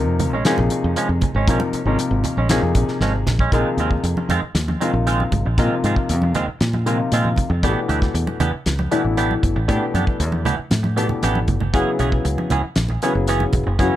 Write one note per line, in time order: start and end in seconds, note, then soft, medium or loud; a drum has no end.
0.00 0.33 C3 medium
0.00 0.33 F3 medium
0.00 0.33 A#3 medium
0.00 0.33 D#4 medium
0.00 0.33 A#4 medium
0.07 0.33 F2 medium
0.19 muted clean electric guitar stroke soft
0.19 closed hi-hat medium
0.19 low conga medium
0.33 0.43 A#1 medium
0.33 0.45 G#3 soft
0.33 0.46 C#4 medium
0.45 1.27 C3 medium
0.45 1.27 F3 medium
0.45 0.59 F3 medium
0.45 0.58 G#3 medium
0.45 1.27 A#3 medium
0.45 0.57 C#4 medium
0.45 1.27 D#4 medium
0.45 1.27 G#4 medium
0.45 snare loud
0.45 closed hi-hat medium
0.58 0.68 A#1 medium
0.58 muted clean electric guitar stroke soft
0.58 low conga medium
0.70 muted clean electric guitar stroke soft
0.70 closed hi-hat medium
0.84 0.94 F2 medium
0.96 1.10 F3 medium
0.96 1.10 G#3 medium
0.96 1.10 C#4 medium
0.96 closed hi-hat medium
1.09 1.19 F2 medium
1.21 muted clean electric guitar stroke soft
1.21 kick medium
1.21 closed hi-hat medium
1.21 low conga medium
1.35 1.45 G#1 medium
1.35 1.49 G#3 soft
1.35 1.48 C#4 medium
1.48 1.58 A#1 medium
1.48 1.78 C3 medium
1.48 1.78 F3 medium
1.48 1.62 F3 medium
1.48 1.61 G#3 medium
1.48 1.78 A#3 medium
1.48 1.61 C#4 loud
1.48 1.78 D#4 medium
1.48 1.78 A#4 medium
1.48 kick loud
1.48 closed hi-hat medium
1.60 muted clean electric guitar stroke soft
1.60 high conga medium
1.73 muted fingered electric bass stroke soft
1.73 muted clean electric guitar stroke soft
1.73 closed hi-hat medium
1.85 1.96 G#1 medium
1.85 2.37 C3 medium
1.85 2.37 F3 medium
1.85 2.00 G#3 soft
1.85 2.37 A#3 medium
1.85 1.99 C#4 soft
1.85 2.37 D#4 medium
1.85 2.37 A#4 medium
1.99 muted clean electric guitar stroke soft
1.99 closed hi-hat medium
2.11 2.21 G#1 medium
2.24 muted clean electric guitar stroke soft
2.24 closed hi-hat medium
2.24 low conga medium
2.37 2.57 A#1 medium
2.37 2.50 G#3 soft
2.37 2.50 C#4 medium
2.49 3.31 C3 medium
2.49 2.63 F3 medium
2.49 3.32 F3 medium
2.49 2.63 G#3 medium
2.49 3.31 A#3 medium
2.49 2.62 C#4 medium
2.49 3.32 D#4 medium
2.49 3.32 G#4 medium
2.49 snare loud
2.49 closed hi-hat medium
2.49 high conga medium
2.62 2.73 F2 medium
2.62 muted clean electric guitar stroke soft
2.75 2.85 A#1 medium
2.75 muted clean electric guitar stroke soft
2.75 kick medium
2.75 closed hi-hat medium
2.88 snare soft
3.00 3.24 G#1 medium
3.00 3.15 F3 medium
3.00 3.14 G#3 medium
3.00 3.14 C#4 medium
3.00 snare medium
3.15 muted clean electric guitar stroke soft
3.26 3.50 A#1 medium
3.26 muted clean electric guitar stroke soft
3.26 snare medium
3.26 high conga medium
3.26 low conga medium
3.39 3.53 G#3 soft
3.39 3.53 C#4 medium
3.39 kick medium
3.52 3.62 A#1 medium
3.52 4.34 C3 medium
3.52 3.68 D#3 medium
3.52 4.34 F3 medium
3.52 3.69 G#3 medium
3.52 4.34 A#3 medium
3.52 3.69 C4 medium
3.52 4.34 D#4 medium
3.52 3.69 F4 medium
3.52 4.35 G#4 medium
3.52 kick loud
3.52 closed hi-hat medium
3.77 3.98 D#2 medium
3.77 3.92 D#3 medium
3.77 3.92 G#3 medium
3.77 3.91 C4 medium
3.77 3.91 F4 medium
3.77 closed hi-hat soft
3.91 muted clean electric guitar stroke soft
3.91 kick medium
4.03 4.14 F2 medium
4.03 muted clean electric guitar stroke soft
4.03 closed hi-hat medium
4.17 muted clean electric guitar stroke soft
4.17 high conga medium
4.29 4.39 F2 medium
4.29 4.43 D#3 medium
4.29 4.42 G#3 medium
4.29 4.42 C4 medium
4.29 4.42 F4 medium
4.29 closed hi-hat medium
4.29 low conga medium
4.42 muted fingered electric bass stroke soft
4.42 muted clean electric guitar stroke soft
4.55 4.75 D#2 medium
4.55 snare loud
4.55 closed hi-hat medium
4.68 muted clean electric guitar stroke soft
4.68 high conga medium
4.81 5.43 C3 medium
4.81 4.94 D#3 soft
4.81 5.43 F3 medium
4.81 4.93 G#3 medium
4.81 5.43 A#3 medium
4.81 4.93 C4 medium
4.81 5.43 D#4 medium
4.81 5.43 F4 medium
4.81 4.93 F4 medium
4.81 closed hi-hat medium
4.93 5.24 A#1 medium
4.93 muted clean electric guitar stroke soft
5.07 5.22 D#3 medium
5.07 5.22 G#3 medium
5.07 5.23 C4 medium
5.07 5.23 F4 medium
5.07 closed hi-hat medium
5.20 high conga medium
5.32 5.43 G#1 medium
5.32 muted clean electric guitar stroke soft
5.32 kick medium
5.32 closed hi-hat soft
5.32 low conga medium
5.45 5.55 A#1 medium
5.45 muted clean electric guitar stroke soft
5.58 5.68 A#2 medium
5.58 6.40 C3 medium
5.58 5.74 D#3 medium
5.58 6.40 F3 medium
5.58 5.74 G#3 medium
5.58 6.40 A#3 medium
5.58 5.74 C4 medium
5.58 6.40 D#4 medium
5.58 6.40 F4 medium
5.58 5.74 F4 medium
5.58 kick medium
5.58 closed hi-hat medium
5.84 5.94 G#2 medium
5.84 5.97 D#3 medium
5.84 5.97 G#3 medium
5.84 5.96 C4 medium
5.84 5.96 F4 medium
5.84 closed hi-hat medium
5.96 muted fingered electric bass stroke soft
5.96 muted clean electric guitar stroke soft
5.96 kick medium
6.09 6.34 F2 medium
6.09 muted clean electric guitar stroke soft
6.09 closed hi-hat medium
6.22 muted clean electric guitar stroke soft
6.22 high conga medium
6.34 6.45 D#2 medium
6.34 6.48 D#3 medium
6.34 6.48 G#3 medium
6.34 6.47 C4 medium
6.34 6.47 F4 medium
6.34 closed hi-hat medium
6.34 low conga medium
6.48 muted fingered electric bass stroke soft
6.48 muted clean electric guitar stroke soft
6.61 7.01 A#2 medium
6.61 snare loud
6.61 closed hi-hat medium
6.73 muted clean electric guitar stroke soft
6.73 high conga medium
6.86 7.47 C3 medium
6.86 6.99 D#3 medium
6.86 7.48 F3 medium
6.86 6.99 G#3 medium
6.86 7.48 A#3 medium
6.86 6.99 C4 soft
6.86 7.48 D#4 medium
6.86 7.48 F4 medium
6.86 6.98 F4 medium
6.86 closed hi-hat medium
7.00 muted clean electric guitar stroke soft
7.12 7.32 A#2 medium
7.12 7.28 D#3 medium
7.12 7.28 G#3 medium
7.12 7.28 C4 medium
7.12 7.28 F4 medium
7.12 closed hi-hat medium
7.24 high conga medium
7.36 muted clean electric guitar stroke soft
7.36 kick medium
7.36 closed hi-hat soft
7.36 low conga medium
7.50 7.65 F2 medium
7.50 muted clean electric guitar stroke soft
7.63 7.74 A1 medium
7.63 8.45 B2 medium
7.63 8.45 E3 medium
7.63 7.79 E3 medium
7.63 8.45 A3 medium
7.63 7.79 B3 medium
7.63 8.45 D4 medium
7.63 7.79 D4 medium
7.63 8.45 G4 medium
7.63 7.79 G4 medium
7.63 kick medium
7.63 closed hi-hat medium
7.89 8.09 D2 medium
7.89 8.02 E3 medium
7.89 8.01 B3 medium
7.89 8.01 D4 medium
7.89 8.01 G4 medium
7.89 closed hi-hat medium
8.02 muted clean electric guitar stroke soft
8.02 kick medium
8.02 snare soft
8.14 8.25 E2 medium
8.14 muted clean electric guitar stroke soft
8.14 closed hi-hat medium
8.27 muted clean electric guitar stroke soft
8.27 high conga medium
8.40 8.50 E2 medium
8.40 8.53 E3 medium
8.40 8.53 B3 medium
8.40 8.53 D4 medium
8.40 8.52 G4 medium
8.40 closed hi-hat medium
8.40 low conga medium
8.53 muted fingered electric bass stroke soft
8.53 muted clean electric guitar stroke soft
8.66 8.86 C#2 medium
8.66 snare medium
8.66 closed hi-hat medium
8.79 muted clean electric guitar stroke soft
8.79 high conga medium
8.91 9.53 B2 medium
8.91 9.04 E3 medium
8.91 9.53 E3 medium
8.91 9.53 A3 medium
8.91 9.04 B3 medium
8.91 9.53 D4 medium
8.91 9.04 D4 medium
8.91 9.53 E4 medium
8.91 9.03 G4 medium
8.91 closed hi-hat medium
9.04 9.35 A1 medium
9.04 muted clean electric guitar stroke soft
9.17 9.33 E3 medium
9.17 9.33 B3 medium
9.17 9.33 D4 medium
9.17 9.33 G4 medium
9.17 closed hi-hat medium
9.31 high conga medium
9.43 9.53 G1 medium
9.43 muted clean electric guitar stroke soft
9.43 kick medium
9.43 closed hi-hat soft
9.43 low conga medium
9.56 9.66 A1 medium
9.56 muted clean electric guitar stroke soft
9.68 9.79 A2 medium
9.68 10.50 B2 medium
9.68 10.50 E3 medium
9.68 9.84 E3 medium
9.68 10.50 A3 medium
9.68 9.84 B3 medium
9.68 10.50 D4 medium
9.68 9.84 D4 medium
9.68 10.50 G4 medium
9.68 9.84 G4 medium
9.68 kick medium
9.68 closed hi-hat medium
9.94 10.04 F#2 medium
9.94 10.07 E3 soft
9.94 10.06 B3 medium
9.94 10.06 D4 medium
9.94 10.06 G4 medium
9.94 closed hi-hat soft
9.94 high conga medium
10.07 muted clean electric guitar stroke soft
10.07 muted fingered electric bass stroke soft
10.07 kick medium
10.20 10.45 E2 medium
10.20 muted clean electric guitar stroke soft
10.20 closed hi-hat medium
10.32 muted clean electric guitar stroke soft
10.32 high conga medium
10.45 10.56 D2 medium
10.45 10.58 E3 medium
10.45 10.57 B3 medium
10.45 10.57 D4 medium
10.45 10.57 G4 medium
10.45 closed hi-hat medium
10.45 low conga medium
10.58 muted clean electric guitar stroke soft
10.58 muted fingered electric bass stroke soft
10.71 11.12 A2 medium
10.71 snare medium
10.71 closed hi-hat medium
10.71 high conga medium
10.83 muted clean electric guitar stroke soft
10.83 high conga medium
10.96 11.58 B2 medium
10.96 11.10 E3 soft
10.96 11.58 E3 medium
10.96 11.58 A3 medium
10.96 11.09 B3 medium
10.96 11.58 D4 medium
10.96 11.09 D4 medium
10.96 11.58 G4 medium
10.96 11.08 G4 medium
10.96 closed hi-hat medium
11.09 muted clean electric guitar stroke soft
11.09 low conga medium
11.23 11.46 A1 medium
11.23 11.38 E3 medium
11.23 11.39 B3 medium
11.23 11.39 D4 medium
11.23 11.39 G4 medium
11.23 closed hi-hat medium
11.23 high conga soft
11.35 high conga medium
11.48 11.74 G1 medium
11.48 muted clean electric guitar stroke soft
11.48 kick medium
11.48 closed hi-hat soft
11.48 low conga medium
11.60 muted clean electric guitar stroke soft
11.60 low conga medium
11.73 11.84 F#1 medium
11.73 12.55 C#3 medium
11.73 11.89 E3 medium
11.73 12.55 F#3 medium
11.73 12.55 B3 medium
11.73 11.89 B3 medium
11.73 11.90 C#4 medium
11.73 12.55 E4 medium
11.73 12.55 G#4 medium
11.73 11.90 G#4 medium
11.73 kick loud
11.73 closed hi-hat medium
11.99 12.19 B1 medium
11.99 12.12 E3 medium
11.99 12.12 B3 medium
11.99 12.12 C#4 medium
11.99 12.11 G#4 medium
11.99 closed hi-hat soft
12.12 muted clean electric guitar stroke soft
12.12 kick medium
12.25 12.35 C#2 medium
12.25 muted clean electric guitar stroke soft
12.25 closed hi-hat medium
12.38 muted clean electric guitar stroke soft
12.38 high conga medium
12.50 12.61 C#2 medium
12.50 12.64 E3 medium
12.50 12.63 B3 medium
12.50 12.63 C#4 medium
12.50 12.63 G#4 medium
12.50 closed hi-hat medium
12.50 low conga medium
12.64 muted clean electric guitar stroke soft
12.76 12.96 A#1 medium
12.76 snare loud
12.76 closed hi-hat medium
12.89 muted clean electric guitar stroke soft
12.89 high conga medium
13.02 13.63 C#3 medium
13.02 13.15 E3 medium
13.02 13.63 F#3 medium
13.02 13.64 B3 medium
13.02 13.15 B3 medium
13.02 13.14 C#4 medium
13.02 13.64 E4 medium
13.02 13.64 G#4 medium
13.02 13.14 G#4 medium
13.02 closed hi-hat medium
13.15 13.45 F#1 medium
13.15 muted clean electric guitar stroke soft
13.27 13.43 E3 medium
13.27 13.44 B3 medium
13.27 13.44 C#4 medium
13.27 13.44 G#4 medium
13.27 closed hi-hat medium
13.40 high conga medium
13.53 13.63 E1 medium
13.53 muted clean electric guitar stroke soft
13.53 kick medium
13.53 closed hi-hat soft
13.53 low conga medium
13.66 13.76 F#1 medium
13.66 muted clean electric guitar stroke soft
13.79 13.89 F#2 medium
13.79 13.96 C#3 medium
13.79 13.94 E3 medium
13.79 13.96 F#3 medium
13.79 13.95 B3 medium
13.79 13.96 B3 medium
13.79 13.95 C#4 medium
13.79 13.96 E4 medium
13.79 13.96 F#4 medium
13.79 13.95 G#4 medium
13.79 kick loud
13.79 closed hi-hat medium